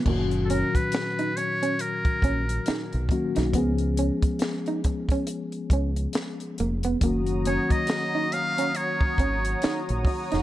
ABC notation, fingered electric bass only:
X:1
M:4/4
L:1/16
Q:"Swing 16ths" 1/4=69
K:F#
V:1 name="Fingered electric bass" clef=bass
F,,,3 z6 z A,,,2 z B,,, z B,,, | C,,3 z6 z C,,2 z2 E,,,2 | F,,,3 z6 z G,,,2 z A,,, z E,,, |]